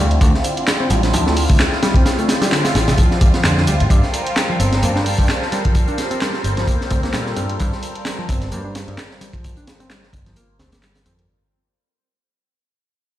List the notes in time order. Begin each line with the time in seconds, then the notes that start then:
Already playing: D3 C4 E4 F4
0.00 D2
0.11 closed hi-hat
0.21 D2 D3, kick, closed hi-hat
0.34 snare
0.44 closed hi-hat
0.57 closed hi-hat
0.67 snare, clap, closed hi-hat
0.80 C4
0.90 A1 G3, closed hi-hat
1.03 snare, closed hi-hat
1.13 D2 F3, closed hi-hat
1.26 A3, snare
1.36 closed hi-hat, open hi-hat
1.50 D2, kick, closed hi-hat
1.60 snare, clap, closed hi-hat
1.73 snare
1.83 G3, snare, closed hi-hat
1.94 C4, kick, closed hi-hat
2.06 snare, closed hi-hat
2.19 A3, closed hi-hat
2.29 snare, closed hi-hat
2.42 G3, snare, closed hi-hat
2.52 D3, snare, clap, closed hi-hat
2.65 snare, closed hi-hat
2.75 A1, snare, closed hi-hat
2.88 C3, snare, closed hi-hat
2.98 F3, kick, closed hi-hat
3.11 snare
3.21 A1 G3, kick, closed hi-hat
3.34 F3, muted picked electric bass stroke, snare, closed hi-hat
3.44 F2 D3, snare, clap, closed hi-hat
3.58 snare
3.67 D2 G3, closed hi-hat
3.80 A1, closed hi-hat
3.90 G2 G3 A4 A#4 C5, kick, closed hi-hat
4.03 snare
4.14 closed hi-hat
4.26 closed hi-hat
4.36 snare, clap, closed hi-hat
4.50 F3
4.60 G1 C4, closed hi-hat
4.72 snare, closed hi-hat
4.82 G2 A#3, closed hi-hat
4.96 D4, snare
5.06 closed hi-hat, open hi-hat
5.18 G2, kick, closed hi-hat
5.29 snare, clap, closed hi-hat
5.42 snare
5.52 G3, snare, closed hi-hat
5.65 F3, kick, closed hi-hat
5.75 kick, closed hi-hat
5.88 D4, closed hi-hat
5.98 snare, closed hi-hat
6.11 C4, closed hi-hat
6.21 G3, snare, clap, closed hi-hat
6.33 snare
6.44 G1, closed hi-hat
6.57 F3, snare, closed hi-hat
6.67 A#3, kick, closed hi-hat
6.81 snare
6.91 D2 C4, kick, closed hi-hat
7.03 A#3, muted picked electric bass stroke, snare, closed hi-hat
7.13 A#2 G3, snare, clap, closed hi-hat
7.26 snare
7.36 G2 C4, closed hi-hat
7.49 closed hi-hat
7.60 G2 G3, kick, closed hi-hat
7.72 snare
7.83 closed hi-hat
7.95 closed hi-hat
8.05 snare, clap, closed hi-hat
8.19 F3
8.29 G1 C4, kick, closed hi-hat
8.41 snare, closed hi-hat
8.51 G2 A#3, closed hi-hat
8.65 D4
8.75 snare, closed hi-hat
8.88 G2, closed hi-hat
8.98 snare, clap, closed hi-hat
9.11 snare
9.21 G3, snare, closed hi-hat
9.33 F3, kick, closed hi-hat
9.44 kick, closed hi-hat
9.57 D4, closed hi-hat
9.67 snare, closed hi-hat
9.80 C4, closed hi-hat
9.90 G3, snare, clap, closed hi-hat
10.03 snare
10.13 G1, kick, closed hi-hat
10.26 F3, snare, closed hi-hat
10.36 A#3, closed hi-hat
10.59 D2 C4, snare, closed hi-hat
10.72 A#3, snare, closed hi-hat
10.82 G3, snare, clap, closed hi-hat
10.95 snare, closed hi-hat
11.06 F2 C4, closed hi-hat
11.19 closed hi-hat